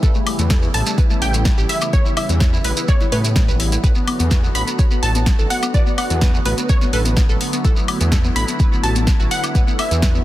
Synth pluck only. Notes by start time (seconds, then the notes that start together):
0.74 A5
1.22 G5
1.69 E5
1.93 C#5
2.17 E5
2.65 B4
2.88 C#5
3.12 B4
4.55 B5
5.03 A5
5.50 F#5
5.74 D5
5.98 F#5
6.46 B4
6.69 C#5
6.93 B4
8.36 B5
8.83 A5
9.31 F#5
9.79 E5